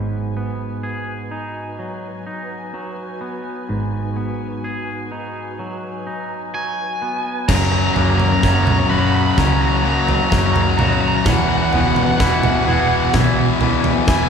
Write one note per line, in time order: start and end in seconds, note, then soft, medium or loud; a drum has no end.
0.00 3.66 G#1 medium
0.00 2.27 G#2 soft
0.00 0.36 B3 soft
0.00 7.46 F#4 soft
0.00 0.52 G#4 soft
0.00 7.45 B4 soft
0.00 7.45 G#5 soft
0.37 2.75 B3 soft
0.83 3.22 G#4 soft
1.31 2.25 D#4 soft
1.79 2.73 F#3 soft
2.27 4.65 D#4 soft
2.74 5.12 F#3 soft
3.21 4.15 B3 soft
3.69 7.45 G#1 medium
3.69 6.07 G#2 soft
4.17 6.54 B3 soft
4.64 7.02 G#4 soft
5.12 6.05 D#4 soft
5.59 6.53 F#3 soft
6.07 7.49 D#4 soft
6.54 7.49 F#3 soft
6.54 7.48 G#5 medium
7.02 7.49 B3 soft
7.48 7.88 F#1 medium
7.48 7.94 F#2 medium
7.48 9.85 F#2 medium
7.48 7.95 C#3 medium
7.48 7.97 F#3 medium
7.48 14.29 F#4 medium
7.48 9.36 C#5 medium
7.48 11.23 F#5 medium
7.48 7.55 A#5 medium
7.48 kick loud
7.48 snare soft
7.48 floor tom medium
7.48 crash loud
7.56 7.64 A#5 medium
7.64 7.72 A#5 medium
7.72 7.78 A#5 medium
7.78 7.86 A#5 medium
7.87 7.94 A#5 medium
7.94 8.35 F#1 medium
7.94 8.42 F#2 medium
7.94 8.43 C#3 medium
7.94 8.44 F#3 medium
7.94 9.84 A#3 medium
7.94 8.01 A#5 medium
7.94 floor tom medium
8.02 8.09 A#5 medium
8.10 8.18 A#5 medium
8.18 8.25 A#5 medium
8.18 floor tom medium
8.25 8.33 A#5 medium
8.33 8.41 A#5 medium
8.41 8.83 F#1 medium
8.41 8.89 F#2 medium
8.41 8.90 C#3 medium
8.41 8.91 F#3 medium
8.41 9.36 C#4 medium
8.41 8.48 A#5 medium
8.41 kick medium
8.41 snare soft
8.49 8.55 A#5 medium
8.56 8.63 A#5 medium
8.65 8.72 A#5 medium
8.65 floor tom medium
8.65 mid tom medium
8.72 8.79 A#5 medium
8.79 8.87 A#5 medium
8.87 9.30 F#1 medium
8.87 9.37 F#2 medium
8.87 9.37 C#3 medium
8.87 10.79 F#4 medium
8.87 8.90 A#5 medium
8.87 8.98 B5 medium
8.92 9.39 F#3 medium
8.99 9.06 B5 medium
9.07 9.15 B5 medium
9.15 9.23 B5 medium
9.23 9.31 B5 medium
9.31 9.37 B5 medium
9.37 10.16 C#2 medium
9.37 9.84 F#2 medium
9.37 9.84 C#3 medium
9.37 9.86 F#3 medium
9.37 10.30 C#4 medium
9.37 11.25 D#5 medium
9.37 9.45 A#5 medium
9.37 kick medium
9.37 snare soft
9.37 floor tom medium
9.46 9.52 A#5 medium
9.53 9.61 A#5 medium
9.62 9.68 A#5 medium
9.69 9.76 A#5 medium
9.77 9.84 A#5 medium
9.84 10.31 F#2 medium
9.84 10.32 C#3 medium
9.84 10.33 F#3 medium
9.84 11.26 A#3 medium
9.84 9.92 A#5 medium
9.93 10.00 A#5 medium
10.00 10.08 A#5 medium
10.08 10.15 A#5 medium
10.08 floor tom medium
10.15 10.23 A#5 medium
10.24 10.30 A#5 medium
10.31 11.10 F#1 medium
10.31 10.79 F#2 medium
10.31 10.79 C#3 medium
10.31 10.81 F#3 medium
10.31 11.26 C#4 medium
10.31 10.38 A#5 medium
10.31 kick medium
10.31 snare medium
10.39 10.46 A#5 medium
10.47 10.53 A#5 medium
10.53 10.61 A#5 medium
10.53 floor tom medium
10.62 10.70 A#5 medium
10.70 10.77 A#5 medium
10.78 11.24 F#2 medium
10.78 11.24 C#3 medium
10.78 11.28 F#3 medium
10.78 11.29 F#4 medium
10.78 10.85 A#5 medium
10.78 floor tom medium
10.78 mid tom medium
10.86 10.93 A#5 medium
10.93 11.00 A#5 medium
11.01 11.07 A#5 medium
11.08 11.16 A#5 medium
11.17 11.24 A#5 medium
11.25 11.65 E1 medium
11.25 11.73 E2 medium
11.25 11.73 B2 medium
11.25 13.62 E3 medium
11.25 11.74 E3 medium
11.25 14.29 E5 medium
11.25 11.34 F#5 medium
11.25 14.29 G#5 medium
11.25 11.33 A#5 medium
11.25 kick loud
11.25 snare medium
11.25 floor tom medium
11.34 11.41 F#5 soft
11.42 11.49 F#5 medium
11.49 11.57 F#5 medium
11.58 11.64 F#5 medium
11.65 11.72 F#5 medium
11.72 12.12 E1 medium
11.72 12.19 E2 medium
11.72 12.20 B2 medium
11.72 12.21 E3 medium
11.72 13.61 B3 medium
11.72 11.80 F#5 medium
11.72 floor tom medium
11.80 11.88 F#5 medium
11.88 11.95 F#5 medium
11.96 12.03 F#5 medium
11.96 floor tom medium
12.03 12.11 F#5 medium
12.11 12.18 F#5 medium
12.18 12.59 E1 medium
12.18 12.66 E2 medium
12.18 12.67 B2 medium
12.18 12.67 E3 medium
12.18 13.13 E4 medium
12.18 12.26 F#5 medium
12.18 kick loud
12.18 snare medium
12.26 12.34 F#5 medium
12.34 12.41 F#5 medium
12.41 12.49 F#5 medium
12.41 floor tom medium
12.41 mid tom medium
12.50 12.56 F#5 medium
12.56 12.64 F#5 medium
12.65 13.07 E1 medium
12.65 13.13 E2 medium
12.65 13.14 B2 medium
12.65 13.14 E3 medium
12.65 14.29 G#4 medium
12.65 12.72 F#5 medium
12.73 12.80 F#5 medium
12.80 12.88 F#5 medium
12.88 12.94 F#5 soft
12.95 13.02 F#5 medium
13.04 13.12 F#5 soft
13.14 13.92 B1 medium
13.14 13.60 E2 medium
13.14 13.61 B2 medium
13.14 13.62 E3 loud
13.14 14.07 E4 medium
13.14 kick loud
13.14 snare medium
13.14 floor tom medium
13.14 mid tom medium
13.61 14.07 E2 medium
13.61 14.08 B2 medium
13.61 14.09 E3 medium
13.61 14.29 B3 medium
13.61 floor tom medium
13.84 floor tom medium
14.08 14.29 E1 medium
14.08 14.29 E2 medium
14.08 14.29 B2 medium
14.08 14.29 E3 medium
14.08 14.29 E4 medium
14.08 14.15 G#5 medium
14.08 kick loud
14.08 snare medium
14.16 14.23 G#5 medium
14.24 14.29 G#5 medium